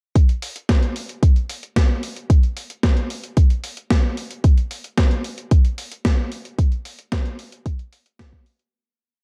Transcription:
0.16 kick loud
0.16 closed hi-hat medium
0.29 closed hi-hat soft
0.42 open hi-hat loud
0.56 closed hi-hat medium
0.69 kick loud
0.69 snare loud
0.69 closed hi-hat medium
0.83 closed hi-hat soft
0.96 open hi-hat medium
1.09 closed hi-hat medium
1.23 kick loud
1.23 closed hi-hat medium
1.36 closed hi-hat soft
1.49 open hi-hat loud
1.63 closed hi-hat medium
1.76 kick loud
1.76 snare loud
1.76 closed hi-hat medium
2.03 open hi-hat medium
2.16 closed hi-hat medium
2.30 kick loud
2.30 closed hi-hat medium
2.43 closed hi-hat soft
2.57 open hi-hat loud
2.70 closed hi-hat medium
2.83 kick loud
2.83 snare loud
2.83 closed hi-hat medium
2.97 closed hi-hat soft
3.10 open hi-hat medium
3.24 closed hi-hat medium
3.37 kick loud
3.37 closed hi-hat medium
3.50 closed hi-hat soft
3.64 open hi-hat loud
3.77 closed hi-hat medium
3.90 kick loud
3.90 snare loud
3.90 closed hi-hat medium
4.17 open hi-hat medium
4.31 closed hi-hat medium
4.44 kick loud
4.44 closed hi-hat medium
4.58 closed hi-hat soft
4.71 open hi-hat loud
4.84 closed hi-hat medium
4.98 kick loud
4.98 snare loud
4.98 closed hi-hat medium
5.11 closed hi-hat soft
5.24 open hi-hat medium
5.38 closed hi-hat medium
5.51 kick loud
5.51 closed hi-hat medium
5.65 closed hi-hat soft
5.78 open hi-hat loud
5.92 closed hi-hat medium
6.05 kick loud
6.05 snare loud
6.05 closed hi-hat medium
6.32 open hi-hat medium
6.45 closed hi-hat medium
6.59 kick loud
6.59 closed hi-hat medium
6.72 closed hi-hat soft
6.85 open hi-hat loud
6.99 closed hi-hat medium
7.12 kick loud
7.12 snare loud
7.12 closed hi-hat medium
7.26 closed hi-hat soft
7.39 open hi-hat medium
7.52 closed hi-hat medium
7.66 kick loud
7.66 closed hi-hat medium
7.79 closed hi-hat soft
7.93 open hi-hat loud
8.06 closed hi-hat soft
8.19 kick loud
8.19 snare loud
8.19 closed hi-hat medium
8.33 kick medium
8.46 open hi-hat medium
8.59 closed hi-hat medium

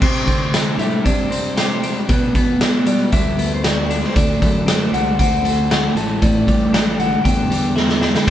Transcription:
0.01 1.31 C3 medium
0.01 0.24 C3 loud
0.01 0.76 C5 medium
0.01 kick loud
0.01 crash loud
0.27 0.73 D3 medium
0.27 1.29 C4 medium
0.27 kick medium
0.27 closed hi-hat medium
0.54 1.04 D4 medium
0.54 snare loud
0.54 closed hi-hat medium
0.54 tambourine loud
0.78 1.01 A2 medium
0.78 2.09 G3 medium
0.78 1.05 E5 medium
0.78 closed hi-hat medium
1.04 1.96 C3 medium
1.04 1.83 D4 medium
1.04 1.54 D5 medium
1.04 kick medium
1.04 closed hi-hat medium
1.30 2.08 C4 medium
1.30 closed hi-hat medium
1.57 2.09 G4 medium
1.57 1.94 C5 medium
1.57 snare loud
1.57 closed hi-hat medium
1.57 tambourine loud
1.83 2.61 D4 medium
1.83 closed hi-hat medium
2.09 3.38 B2 medium
2.09 2.31 B2 loud
2.09 2.89 B4 medium
2.09 kick loud
2.09 closed hi-hat medium
2.35 3.02 B2 medium
2.35 3.38 B3 medium
2.35 kick medium
2.35 closed hi-hat medium
2.61 3.12 D4 medium
2.61 snare loud
2.61 closed hi-hat medium
2.61 tambourine loud
2.87 4.15 G3 medium
2.87 3.12 D5 medium
2.87 closed hi-hat medium
3.12 4.02 D2 loud
3.12 3.89 D4 medium
3.12 3.54 E5 loud
3.12 kick medium
3.12 closed hi-hat medium
3.39 4.16 B3 medium
3.39 closed hi-hat medium
3.54 3.63 C5 medium
3.63 4.15 F#4 medium
3.63 3.99 D5 medium
3.63 snare loud
3.63 closed hi-hat medium
3.63 tambourine loud
3.90 4.66 D4 medium
3.90 closed hi-hat medium
4.04 4.15 C5 medium
4.04 snare soft
4.15 4.38 D2 loud
4.15 4.92 D3 medium
4.15 4.93 D5 medium
4.15 kick loud
4.15 closed hi-hat medium
4.42 4.86 F#2 medium
4.42 5.44 A3 medium
4.42 kick medium
4.42 closed hi-hat medium
4.67 5.18 C4 medium
4.67 snare loud
4.67 closed hi-hat loud
4.67 tambourine loud
4.92 5.15 C2 medium
4.92 5.96 D3 medium
4.92 5.18 F#5 medium
4.92 closed hi-hat medium
5.19 5.86 D2 medium
5.19 5.96 C4 medium
5.19 5.92 F#5 loud
5.19 kick medium
5.19 closed hi-hat loud
5.45 5.96 A3 medium
5.45 closed hi-hat medium
5.70 5.96 F#4 medium
5.70 snare loud
5.70 closed hi-hat medium
5.70 tambourine loud
5.95 6.40 A1 loud
5.95 6.20 A2 medium
5.95 6.23 A5 loud
5.95 closed hi-hat medium
6.22 7.50 A2 medium
6.22 7.01 D5 medium
6.22 kick loud
6.22 closed hi-hat medium
6.47 7.14 A1 medium
6.47 7.49 G3 medium
6.47 kick medium
6.47 closed hi-hat medium
6.73 7.23 D4 medium
6.73 snare loud
6.73 closed hi-hat medium
6.73 tambourine loud
6.99 8.27 D3 medium
6.99 7.23 F#5 loud
6.99 closed hi-hat medium
7.24 8.14 E2 loud
7.24 8.00 D4 medium
7.24 7.97 G5 loud
7.24 kick medium
7.24 closed hi-hat medium
7.50 8.26 G3 medium
7.50 closed hi-hat medium
7.76 8.27 E4 medium
7.76 snare medium
7.89 snare medium
8.01 8.27 D4 medium
8.01 snare medium
8.14 snare medium
8.27 8.30 C3 loud

